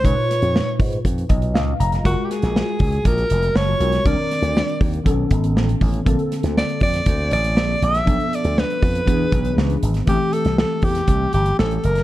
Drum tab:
HH |x-xx--oxxxxx--xx|x-xx--oxxxxx--xx|x-xx-xoxx-xx-xox|xxxx-xoxx-xx--xx|
SD |--o-o-------o--o|--ooo-------o--o|--o-o-------o---|--ooo--o----o--o|
BD |o-----o-o-o-----|o-----o-o-------|o-----o-o-o---o-|o-----o-o-------|

HH |xxxx-xoxx-xx-xxx|x-xx--oxx-xx-xxx|
SD |----o-------o--o|---oo--o----o--o|
BD |o-----o-o-o-----|o-----o-o-------|